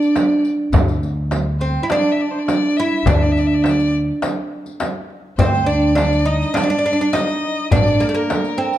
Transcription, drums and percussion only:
0.02 riq
0.16 riq, darbuka tek, frame drum
0.45 riq
0.73 riq, darbuka dum, frame drum
0.88 riq, darbuka ka
1.03 riq
1.31 riq, darbuka tek, frame drum
1.61 riq
1.90 riq, darbuka tek, frame drum
2.48 riq, darbuka tek, frame drum
2.78 riq
3.06 riq, darbuka dum, frame drum
3.35 riq, darbuka ka
3.64 riq, darbuka tek, frame drum
3.79 riq
4.08 darbuka ka
4.22 riq, darbuka tek, frame drum
4.66 riq, darbuka ka
4.80 riq, darbuka tek, frame drum
4.95 darbuka ka
5.10 darbuka ka
5.39 riq, darbuka dum, frame drum
5.55 riq
5.68 riq, darbuka ka
5.96 riq, darbuka tek, frame drum
6.13 riq
6.42 riq
6.55 riq, darbuka tek, frame drum
6.99 darbuka ka
7.13 riq, darbuka tek, frame drum
7.28 riq, darbuka ka
7.42 darbuka ka
7.71 riq, darbuka dum, frame drum
7.86 riq
8.02 riq
8.30 riq, darbuka tek, frame drum
8.45 riq
8.59 darbuka ka
8.73 riq

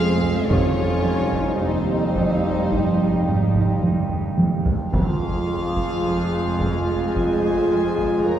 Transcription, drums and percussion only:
0.22 taiko low
0.50 taiko
1.33 taiko
2.16 taiko
2.72 taiko
3.55 taiko
3.82 taiko high
4.10 taiko low-mid
4.38 taiko high
4.66 taiko low
4.94 taiko
5.77 taiko
6.61 taiko
7.16 taiko
7.99 taiko

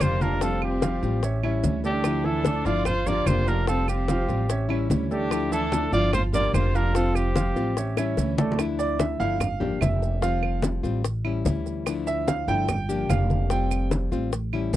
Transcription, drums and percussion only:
0.00 high bongo, low bongo, high conga, claves, maracas
0.21 high bongo, high conga, maracas
0.41 high bongo, high conga, maracas
0.62 high bongo, high conga, claves
0.82 high bongo, high conga, maracas
1.03 high bongo, high conga, maracas
1.23 high bongo, high conga, maracas
1.43 high conga, claves
1.64 high bongo, low bongo, high conga, maracas
1.84 high bongo, high conga, maracas
2.04 high bongo, high conga, claves, maracas
2.24 high bongo, high conga
2.45 high bongo, high conga, maracas
2.65 high bongo, high conga, maracas
2.85 high bongo, high conga, low conga, claves, maracas
3.07 high conga, low conga, maracas
3.26 high bongo, low bongo, high conga, claves, maracas
3.47 high bongo, maracas
3.67 high bongo, high conga, maracas
3.88 high bongo, high conga, claves, maracas
4.08 high bongo, high conga, maracas
4.29 high bongo, high conga, maracas
4.49 high bongo, high conga, maracas
4.70 high conga, claves
4.90 high bongo, low bongo, high conga, maracas
5.11 high bongo, high conga, maracas
5.31 high bongo, high conga, claves, maracas
5.52 high bongo, high conga, maracas
5.72 high bongo, high conga, maracas
5.93 high bongo, high conga, maracas
6.13 high bongo, high conga, low conga, claves, maracas
6.34 high conga, low conga, maracas
6.54 high bongo, low bongo, high conga, claves, maracas
6.74 high bongo, maracas
6.95 high bongo, high conga, maracas
7.15 high bongo, high conga, claves, maracas
7.36 high bongo, high conga, maracas
7.56 high bongo, high conga, maracas
7.77 high bongo, high conga, maracas
7.97 high bongo, high conga, claves, maracas
8.17 high bongo, high conga, maracas
8.38 low bongo, high conga, maracas
8.52 low conga
8.59 high bongo, high conga, claves, maracas
8.79 high bongo, high conga, maracas
9.00 high bongo, high conga, maracas
9.20 high bongo, high conga, maracas
9.40 high bongo, high conga, low conga, claves, maracas
9.61 high conga, low conga
9.81 high bongo, low bongo, high conga, claves, maracas
10.02 high bongo, maracas
10.22 high bongo, high conga, maracas
10.43 high bongo, high conga, claves
10.62 high bongo, high conga, maracas
10.84 high bongo, high conga, maracas
11.04 high bongo, high conga, maracas
11.25 high conga, claves
11.45 high bongo, low bongo, high conga, maracas
11.66 high bongo, high conga, maracas
11.86 high bongo, high conga, claves, maracas
12.07 high bongo, high conga, maracas
12.28 high bongo, high conga, maracas
12.48 high bongo, high conga, maracas
12.69 high bongo, high conga, low conga, claves, maracas
12.89 high conga, maracas
13.10 high bongo, low bongo, high conga, claves, maracas
13.30 high bongo, high conga, maracas
13.50 high bongo, high conga, maracas
13.71 high bongo, high conga, claves, maracas
13.91 high bongo, high conga, maracas
14.12 high bongo, high conga, maracas
14.32 high bongo, high conga, maracas
14.53 high conga, claves
14.73 high bongo, low bongo, high conga, maracas

